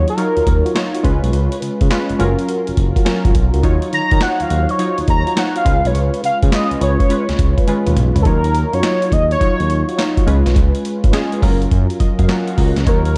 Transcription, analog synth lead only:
0.10 0.91 A#4 loud
3.94 4.24 A#5 loud
4.22 4.43 F#5 loud
4.42 4.72 F5 loud
4.71 4.99 C#5 loud
5.10 5.40 A#5 loud
5.38 5.57 F#5 medium
5.57 5.88 F5 medium
5.87 6.14 C#5 medium
6.25 6.38 F5 medium
6.55 6.80 D#5 medium
6.83 7.93 C#5 medium
8.22 8.28 A4 medium
8.26 8.75 A#4 loud
8.74 9.14 C#5 loud
9.13 9.31 D#5 loud
9.32 10.24 C#5 loud
12.88 13.18 A#4 loud

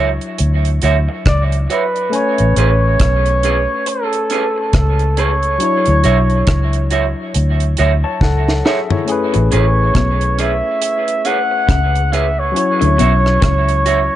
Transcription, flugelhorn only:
1.28 1.44 D5 loud
1.72 2.17 B4 medium
2.15 2.57 C#5 loud
2.58 3.91 C#5 loud
3.89 4.75 A4 medium
4.77 5.21 A4 medium
5.20 6.93 C#5 loud
9.53 10.42 C#5 loud
10.40 11.27 E5 loud
11.26 12.14 F#5 loud
12.13 12.41 E5 medium
12.39 14.16 C#5 loud

